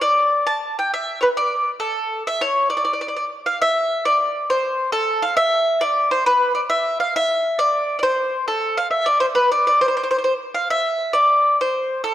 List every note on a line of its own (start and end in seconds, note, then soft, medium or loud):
0.01 0.45 D5 medium
0.47 0.77 A5 medium
0.79 0.93 G5 medium
0.94 1.19 E5 medium
1.21 1.28 B4 medium
1.21 1.25 C#5 medium
1.37 1.69 D5 loud
1.80 2.23 A4 medium
2.27 2.42 E5 medium
2.41 2.69 C#5 medium
2.70 2.76 D5 medium
2.77 2.83 D5 medium
2.85 2.92 D5 medium
2.93 3.00 D5 medium
3.01 3.07 D5 medium
3.08 3.16 D5 soft
3.17 3.24 D5 medium
3.46 3.60 F5 medium
3.62 4.04 E5 loud
4.05 4.47 D5 medium
4.50 4.91 C5 medium
4.92 5.24 A4 loud
5.22 5.36 F5 medium
5.37 5.83 E5 loud
5.81 6.09 D5 medium
6.11 6.26 C5 medium
6.26 6.54 B4 loud
6.55 6.60 D5 medium
6.70 6.99 E5 medium
7.00 7.15 F5 medium
7.16 7.59 E5 loud
7.59 7.96 D5 medium
7.99 8.03 D5 medium
8.03 8.47 C5 medium
8.48 8.77 A4 medium
8.77 8.90 F5 medium
8.91 9.07 E5 medium
9.06 9.20 D5 medium
9.20 9.25 C5 medium
9.35 9.51 B4 medium
9.52 9.66 D5 medium
9.67 9.81 D5 medium
9.81 9.87 C5 medium
9.88 9.96 C5 medium
9.97 10.02 C5 medium
10.03 10.10 C5 medium
10.11 10.17 C5 medium
10.18 10.23 C5 medium
10.24 10.33 C5 medium
10.55 10.70 F5 medium
10.70 11.17 E5 medium
11.13 11.56 D5 medium
11.61 12.02 C5 medium
12.04 12.14 A4 medium